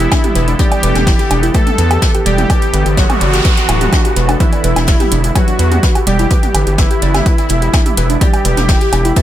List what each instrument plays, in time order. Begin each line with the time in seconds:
Already playing: ambient pad D3 E3 B3 A4, supersaw synth E4
0.00 synth arpeggio sound G4, closed hi-hat
0.11 synth arpeggio sound D4, kick, snare, closed hi-hat, low woodblock
0.24 synth arpeggio sound G4, closed hi-hat, mid tom
0.35 analog synth bass E1, synth arpeggio sound B4, closed hi-hat
0.48 synth arpeggio sound D4, closed hi-hat
0.59 synth pluck G3, synth arpeggio sound D4, supersaw synth G4, kick, closed hi-hat
0.72 synth arpeggio sound D5, closed hi-hat, low woodblock
0.83 analog synth bass E1, synth arpeggio sound B4, closed hi-hat
0.95 analog synth bass E1, synth arpeggio sound D4, snare, closed hi-hat, mid tom
1.06 synth arpeggio sound E4, kick, snare, closed hi-hat, open hi-hat
1.19 synth arpeggio sound G4, closed hi-hat
1.30 analog synth bass E1, synth arpeggio sound D4, closed hi-hat, low woodblock
1.43 synth arpeggio sound E4, closed hi-hat
1.54 synth pluck A3, supersaw synth A4, synth arpeggio sound B4, kick, closed hi-hat
1.67 synth arpeggio sound D4, closed hi-hat, mid tom
1.78 analog synth bass E2, synth arpeggio sound B4, closed hi-hat
1.91 synth arpeggio sound G4, closed hi-hat, low woodblock
2.02 synth arpeggio sound B4, kick, snare, closed hi-hat
2.14 synth arpeggio sound G4, closed hi-hat
2.26 analog synth bass E1, synth pluck G3, supersaw synth G4, synth arpeggio sound D5, closed hi-hat
2.38 synth arpeggio sound E4, closed hi-hat, mid tom
2.50 synth arpeggio sound B4, kick, closed hi-hat, noise sweep, low woodblock
2.61 closed hi-hat
2.74 analog synth bass G1, synth arpeggio sound B4, closed hi-hat
2.86 analog synth bass G1, synth arpeggio sound G4, closed hi-hat
2.97 synth pluck F#3, supersaw synth F#4, kick, snare, closed hi-hat
3.10 synth arpeggio sound G4, closed hi-hat, mid tom, low woodblock
3.21 analog synth bass F#1, synth arpeggio sound D5, closed hi-hat
3.33 synth arpeggio sound G4, snare, closed hi-hat
3.45 synth arpeggio sound B4, kick, closed hi-hat
3.57 closed hi-hat
3.69 analog synth bass D1, synth arpeggio sound E4, closed hi-hat, low woodblock
3.81 synth arpeggio sound G4, closed hi-hat, mid tom
3.92 synth arpeggio sound D4, kick, snare, closed hi-hat
4.05 synth arpeggio sound G4, closed hi-hat
4.16 analog synth bass E1, synth arpeggio sound B4, closed hi-hat
4.29 synth arpeggio sound D4, closed hi-hat, low woodblock
4.40 synth pluck E3, synth arpeggio sound D4, ambient pad E4, supersaw synth E4, kick, closed hi-hat
4.53 synth arpeggio sound D5, closed hi-hat
4.64 analog synth bass E1, synth arpeggio sound B4, closed hi-hat
4.76 analog synth bass E1, synth arpeggio sound D4, snare, closed hi-hat, low woodblock
4.87 synth arpeggio sound E4, kick, snare, closed hi-hat, open hi-hat
5.00 synth arpeggio sound G4, closed hi-hat, mid tom
5.12 analog synth bass E1, synth arpeggio sound D4, closed hi-hat
5.24 synth arpeggio sound E4, closed hi-hat
5.35 synth pluck F#3, supersaw synth F#4, synth arpeggio sound B4, kick, closed hi-hat, low woodblock
5.48 synth arpeggio sound D4, closed hi-hat
5.59 analog synth bass E2, synth arpeggio sound B4, closed hi-hat
5.72 synth arpeggio sound G4, closed hi-hat, mid tom
5.83 synth arpeggio sound B4, kick, snare, closed hi-hat
5.95 synth arpeggio sound G4, closed hi-hat, low woodblock
6.07 analog synth bass E1, synth pluck G3, supersaw synth G4, synth arpeggio sound D5, closed hi-hat
6.19 synth arpeggio sound E4, closed hi-hat
6.31 synth arpeggio sound B4, kick, closed hi-hat
6.43 closed hi-hat, mid tom
6.54 analog synth bass G1, synth arpeggio sound B4, closed hi-hat, low woodblock
6.67 analog synth bass G1, synth arpeggio sound G4, closed hi-hat
6.78 synth pluck E3, supersaw synth E4, kick, snare, closed hi-hat
6.91 synth arpeggio sound G4, closed hi-hat
7.02 analog synth bass F#1, synth arpeggio sound D5, closed hi-hat
7.14 synth arpeggio sound G4, snare, closed hi-hat, mid tom, low woodblock
7.26 synth arpeggio sound B4, kick, closed hi-hat
7.38 closed hi-hat
7.49 analog synth bass E1, synth arpeggio sound E4, closed hi-hat
7.62 synth arpeggio sound G4, closed hi-hat
7.73 synth arpeggio sound D4, kick, snare, closed hi-hat, low woodblock
7.86 synth arpeggio sound G4, closed hi-hat, mid tom
7.97 analog synth bass E1, synth arpeggio sound B4, closed hi-hat
8.10 synth arpeggio sound D4, closed hi-hat
8.21 synth pluck G3, synth arpeggio sound D4, supersaw synth G4, kick, closed hi-hat
8.34 synth arpeggio sound D5, closed hi-hat, low woodblock
8.45 analog synth bass E1, synth arpeggio sound B4, closed hi-hat
8.57 analog synth bass E1, synth arpeggio sound D4, snare, closed hi-hat, mid tom
8.68 synth arpeggio sound E4, kick, snare, closed hi-hat, open hi-hat
8.81 synth arpeggio sound G4, closed hi-hat
8.93 analog synth bass E1, synth arpeggio sound D4, closed hi-hat, low woodblock
9.05 synth arpeggio sound E4, closed hi-hat
9.16 synth pluck A3, supersaw synth A4, synth arpeggio sound B4, kick, closed hi-hat